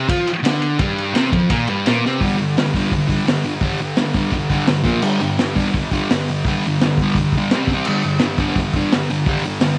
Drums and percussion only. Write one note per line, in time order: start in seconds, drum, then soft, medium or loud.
0.09 kick loud
0.09 ride loud
0.27 ride medium
0.45 snare loud
0.45 ride loud
0.62 ride medium
0.79 kick loud
0.79 ride loud
0.98 ride medium
1.15 snare loud
1.15 ride loud
1.32 kick loud
1.32 ride medium
1.50 kick loud
1.50 ride loud
1.67 ride medium
1.86 snare loud
1.86 ride medium
2.05 snare medium
2.21 kick loud
2.21 open hi-hat medium
2.39 open hi-hat medium
2.57 snare loud
2.57 open hi-hat medium
2.74 kick medium
2.74 open hi-hat medium
2.85 snare soft
2.92 kick medium
2.92 open hi-hat medium
3.09 kick medium
3.09 open hi-hat medium
3.27 snare loud
3.27 open hi-hat medium
3.44 open hi-hat medium
3.60 kick loud
3.60 open hi-hat medium
3.78 open hi-hat medium
3.96 snare loud
3.96 open hi-hat medium
4.13 kick medium
4.13 open hi-hat medium
4.31 kick medium
4.31 open hi-hat medium
4.50 kick medium
4.50 open hi-hat medium
4.66 snare loud
4.66 open hi-hat medium
4.84 kick loud
4.84 open hi-hat medium
5.02 crash loud
5.20 open hi-hat medium
5.38 snare loud
5.38 open hi-hat medium
5.56 kick medium
5.56 open hi-hat medium
5.66 snare soft
5.74 kick medium
5.74 open hi-hat medium
5.91 kick medium
5.91 open hi-hat medium
6.10 snare loud
6.10 open hi-hat medium
6.28 open hi-hat medium
6.45 kick loud
6.45 open hi-hat medium
6.64 open hi-hat medium
6.80 snare loud
6.80 open hi-hat medium
6.97 kick medium
6.97 open hi-hat medium
7.08 snare soft
7.15 kick medium
7.15 open hi-hat medium
7.32 kick medium
7.32 open hi-hat medium
7.50 snare loud
7.50 open hi-hat medium
7.67 kick loud
7.67 open hi-hat medium
7.85 crash medium
8.02 open hi-hat medium
8.18 snare loud
8.18 open hi-hat medium
8.38 kick medium
8.38 open hi-hat medium
8.49 snare soft
8.56 kick medium
8.56 open hi-hat medium
8.73 kick medium
8.73 open hi-hat medium
8.91 snare loud
8.91 open hi-hat medium
9.10 open hi-hat medium
9.26 kick loud
9.26 open hi-hat medium
9.44 open hi-hat medium
9.60 snare loud
9.60 open hi-hat medium